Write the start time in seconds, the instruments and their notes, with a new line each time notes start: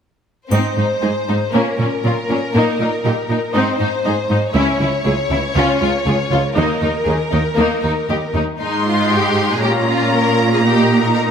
0.51 cello section G#2, violin section C4 C5, viola section D#4, triangle
0.77 cello section G#2, viola section D#4, violin section D#4
1.02 cello section G#2, viola section D#4, violin section G#4
1.29 cello section G#2, violin section D#4, viola section D#4
1.52 cello section A#2, violin section A#3 A#4, viola section C#4
1.78 cello section A#2, viola section C#4, violin section C#4
2.04 cello section A#2, viola section C#4, violin section F4
2.29 cello section A#2, violin section C#4, viola section C#4
2.54 cello section A#2, violin section A#3, viola section D#4
2.80 cello section A#2, viola section D#4, violin section D#4
3.04 cello section A#2, viola section D#4, violin section G4
3.30 cello section A#2, viola section D#4, violin section D#4
3.52 cello section G#2, violin section C4 C5, viola section D#4
3.79 cello section G#2, viola section D#4, violin section D#4
4.05 cello section G#2, viola section D#4, violin section G#4
4.30 cello section G#2, viola section D#4, violin section D#4
4.54 cello section C#2, violin section C#4 C#5, viola section E4
4.80 cello section C#2, viola section E4, violin section E4
5.05 cello section C#2, viola section E4, violin section G#4
5.31 cello section C#2, viola section E4, violin section E4
5.56 cello section C#2, violin section C#4, viola section F4
5.81 cello section C#2, viola section F4, violin section F4
6.06 cello section C#2, viola section F4, violin section G#4
6.31 cello section C#2, violin section F4, viola section F4
6.56 cello section D#2, violin section A#3 A#4, viola section D#4
6.81 cello section D#2, violin section D#4, viola section D#4
7.06 cello section D#2, viola section D#4, violin section G#4
7.31 cello section D#2, violin section D#4, viola section D#4
7.56 cello section D#2, violin section A#3, viola section D#4
7.83 cello section D#2, violin section D#4, viola section D#4
8.09 cello section D#2, viola section D#4, violin section G4
8.35 cello section D#2, violin section D#4, viola section D#4
8.61 cello section G#2, viola section G#3 D#4, violin section D#4 C6
8.88 violin section F4
9.13 violin section G4
9.51 violin section G#4
9.63 cello section A#2, viola section C#4 F4, violin section G4 A#5
9.89 violin section F4
10.15 violin section A#4
10.52 violin section G#4
10.65 viola section A#3 D#4, violin section G4
11.03 violin section A#4
11.14 violin section A#4